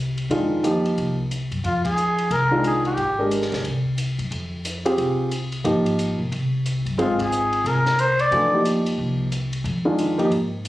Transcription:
0.00 0.26 C2 medium
0.18 ride soft
0.30 0.93 F2 medium
0.30 0.62 D#3 medium
0.30 0.62 G#3 medium
0.30 0.62 D4 soft
0.30 0.63 F4 medium
0.30 ride medium
0.64 1.13 F3 medium
0.64 1.14 A#3 medium
0.64 1.14 D#4 medium
0.64 1.14 G4 medium
0.64 hi-hat pedal medium
0.64 ride medium
0.85 ride soft
0.97 1.47 C2 medium
0.97 ride medium
1.31 hi-hat pedal medium
1.31 ride medium
1.51 1.63 F#2 medium
1.51 ride soft
1.64 2.27 F2 medium
1.64 1.84 F4 medium
1.64 ride soft
1.85 2.33 G#4 medium
1.85 kick medium
1.85 ride medium
1.97 hi-hat pedal medium
2.18 ride soft
2.30 2.94 C2 medium
2.30 2.65 A#4 loud
2.30 ride medium
2.51 2.95 D#3 medium
2.51 2.95 G#3 medium
2.51 2.95 D4 medium
2.51 2.95 F4 medium
2.64 2.84 G#4 medium
2.64 hi-hat pedal medium
2.64 ride medium
2.85 3.28 G4 medium
2.85 ride soft
2.97 3.48 G#1 medium
2.97 ride medium
3.19 3.62 G#3 medium
3.19 3.62 D4 medium
3.19 3.62 G4 medium
3.19 3.62 A#4 medium
3.31 hi-hat pedal medium
3.31 ride medium
3.42 snare soft
3.52 3.63 C2 medium
3.52 snare soft
3.52 ride soft
3.64 4.15 C2 medium
3.64 ride medium
3.98 hi-hat pedal soft
3.98 ride medium
4.19 4.30 F#2 medium
4.19 ride soft
4.31 4.95 F2 medium
4.31 ride soft
4.65 hi-hat pedal medium
4.65 ride medium
4.85 5.29 C4 medium
4.85 5.29 F4 medium
4.85 5.29 G4 medium
4.85 5.29 G#4 medium
4.85 ride soft
4.98 5.61 C2 medium
4.98 ride soft
5.31 hi-hat pedal medium
5.31 ride medium
5.52 ride soft
5.64 6.15 G#1 medium
5.64 6.15 F3 medium
5.64 6.15 A#3 medium
5.64 6.15 D#4 medium
5.64 6.15 G4 medium
5.64 ride medium
5.86 ride soft
5.99 hi-hat pedal medium
5.99 ride medium
6.19 6.31 E1 medium
6.31 6.82 C2 medium
6.31 ride medium
6.66 hi-hat pedal soft
6.66 ride medium
6.85 6.97 F#2 medium
6.85 ride soft
6.98 7.61 G#1 medium
6.98 7.91 G#3 medium
6.98 7.91 C4 medium
6.98 7.91 F4 medium
6.98 7.23 F4 medium
6.98 7.91 G#4 medium
6.98 ride soft
7.19 7.69 G#4 medium
7.19 kick medium
7.19 ride medium
7.32 hi-hat pedal medium
7.53 ride soft
7.64 8.28 C2 medium
7.64 8.01 A#4 medium
7.64 ride medium
7.86 snare soft
7.86 ride soft
7.99 8.22 C5 medium
7.99 hi-hat pedal medium
7.99 ride medium
8.19 8.65 D5 loud
8.19 ride soft
8.31 8.94 F2 medium
8.31 8.50 E3 medium
8.31 8.50 A3 soft
8.31 8.50 D4 medium
8.31 8.50 F#4 medium
8.31 ride soft
8.53 9.24 F3 medium
8.53 9.24 A#3 soft
8.53 9.24 D#4 soft
8.53 9.24 G4 medium
8.65 hi-hat pedal medium
8.65 ride medium
8.86 ride medium
8.98 9.61 C2 medium
9.32 hi-hat pedal medium
9.32 ride medium
9.53 ride soft
9.64 10.27 F2 medium
9.64 ride soft
9.85 10.16 D#3 medium
9.85 10.16 G#3 medium
9.85 10.16 D4 medium
9.85 10.16 F4 medium
9.99 hi-hat pedal medium
9.99 ride medium
10.18 10.29 F3 medium
10.18 10.30 A#3 medium
10.18 10.30 D#4 medium
10.18 10.30 G4 medium
10.18 ride soft
10.31 10.68 G#2 medium
10.31 ride medium
10.65 hi-hat pedal medium
10.65 ride medium

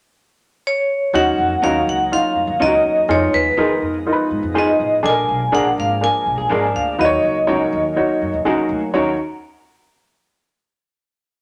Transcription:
0.67 1.16 C#5 medium
1.13 1.32 D#2 loud
1.13 3.08 F#3 medium
1.13 3.07 A#3 medium
1.13 1.49 C#4 medium
1.13 3.07 C#4 medium
1.13 1.49 D#4 medium
1.13 5.00 D#4 medium
1.13 1.49 F#4 loud
1.13 1.65 F#5 loud
1.38 1.56 F2 medium
1.62 1.80 D#2 medium
1.62 1.76 C#4 medium
1.62 1.98 C#4 medium
1.62 1.98 D#4 medium
1.62 1.76 F#4 medium
1.62 1.98 F#4 medium
1.62 1.77 A#4 medium
1.62 1.88 F5 medium
1.87 2.14 C#2 medium
1.87 2.13 F#5 medium
2.12 2.47 C#4 medium
2.12 2.47 D#4 medium
2.12 2.47 F4 medium
2.12 2.63 F5 medium
2.35 2.45 F2 medium
2.47 2.57 D#2 medium
2.60 2.78 C#2 medium
2.60 2.74 C#4 medium
2.60 2.95 C#4 medium
2.60 2.95 D#4 medium
2.60 2.66 F4 medium
2.60 2.74 F#4 medium
2.60 2.75 A#4 medium
2.60 3.07 D#5 medium
2.66 2.98 F#4 medium
2.84 3.03 E2 medium
3.08 3.27 F2 loud
3.08 6.95 F3 medium
3.08 5.03 G#3 medium
3.08 5.03 B3 medium
3.08 3.44 D#4 medium
3.08 3.44 F4 medium
3.08 3.44 G#4 medium
3.08 3.35 C#5 medium
3.33 3.52 D#2 medium
3.33 3.79 B4 medium
3.57 3.75 D#2 medium
3.57 3.71 D#4 medium
3.57 3.93 D#4 medium
3.57 3.93 F4 medium
3.57 3.72 G#4 medium
3.57 3.93 A#4 medium
3.57 3.72 B4 medium
3.82 4.09 F2 medium
4.07 4.42 D#4 medium
4.07 4.42 F4 medium
4.07 4.13 A#4 medium
4.13 4.45 B4 medium
4.31 4.40 G#2 medium
4.43 4.70 F2 medium
4.54 4.90 D#4 medium
4.54 4.69 D#4 medium
4.54 4.90 F4 medium
4.54 4.90 G#4 medium
4.54 4.70 G#4 medium
4.54 4.70 B4 medium
4.58 5.07 D#5 medium
4.80 4.98 A1 medium
5.03 5.22 A#1 loud
5.03 6.97 G#3 medium
5.03 8.89 A#3 medium
5.03 5.39 D4 medium
5.03 6.97 D4 medium
5.03 5.39 G#4 medium
5.03 5.10 A4 medium
5.03 5.55 G#5 medium
5.09 5.42 A#4 medium
5.28 5.47 B1 medium
5.52 5.71 A#1 medium
5.52 5.66 D4 medium
5.52 5.88 D4 medium
5.52 5.87 G#4 medium
5.52 5.67 G#4 medium
5.52 5.88 A#4 medium
5.52 5.67 A#4 medium
5.52 5.65 F#5 medium
5.78 6.05 G#1 medium
5.78 6.04 F5 medium
6.01 6.36 D4 medium
6.01 6.36 G#4 medium
6.01 6.37 A#4 medium
6.01 6.78 G#5 loud
6.26 6.35 B1 medium
6.38 6.47 A#1 medium
6.38 6.50 G#4 medium
6.50 6.68 G#1 medium
6.50 6.62 G#3 medium
6.50 6.64 D4 medium
6.50 6.85 D4 medium
6.50 6.62 F4 medium
6.50 6.64 G#4 medium
6.50 6.85 G#4 medium
6.50 6.86 A#4 medium
6.50 6.64 A#4 medium
6.64 6.98 F3 medium
6.64 6.98 D4 medium
6.75 6.93 D2 medium
6.75 7.00 F5 medium
6.99 7.17 D#2 loud
6.99 8.92 D#3 medium
6.99 8.92 F#3 medium
6.99 8.92 C#4 medium
6.99 7.34 D#4 medium
6.99 7.34 F#4 medium
6.99 7.05 B4 medium
6.99 8.42 D#5 medium
7.05 7.37 C#5 loud
7.24 7.42 C#2 medium
7.47 7.66 C#2 medium
7.47 7.61 C#4 medium
7.47 7.82 D#4 medium
7.47 7.82 F#4 medium
7.47 7.62 F#4 medium
7.47 7.62 A#4 medium
7.47 7.82 C#5 medium
7.72 7.99 D#2 loud
7.96 8.31 D#4 medium
7.96 8.31 F#4 medium
7.96 8.32 C#5 medium
8.21 8.30 F#2 medium
8.33 8.42 D#2 medium
8.45 8.54 C#2 medium
8.45 8.59 C#4 medium
8.45 8.80 D#4 medium
8.45 8.80 F#4 medium
8.45 8.59 F#4 medium
8.45 8.80 G#4 medium
8.45 8.59 A#4 medium
8.69 8.87 D2 medium
8.94 9.16 D#2 loud
8.94 9.17 D#3 medium
8.94 9.16 F#3 medium
8.94 9.17 A#3 medium
8.94 9.09 C#4 medium
8.94 9.17 C#4 medium
8.94 9.16 D#4 medium
8.94 9.16 F#4 medium
8.94 9.09 F#4 medium
8.94 9.09 A#4 medium
8.94 9.16 C#5 medium

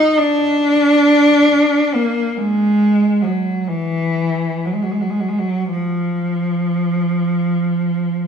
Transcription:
0.00 0.17 D#4 medium
0.18 1.94 D4 medium
1.94 2.37 A#3 medium
2.37 3.23 G#3 medium
3.22 3.68 F#3 medium
3.67 4.65 E3 medium
4.65 4.74 F#3 soft
4.73 4.83 G#3 soft
4.83 4.92 F#3 soft
4.91 5.01 G#3 soft
5.01 5.11 F#3 soft
5.10 5.20 G#3 soft
5.20 5.30 F#3 soft
5.29 5.39 G#3 soft
5.39 5.72 F#3 medium
5.71 8.27 F3 medium

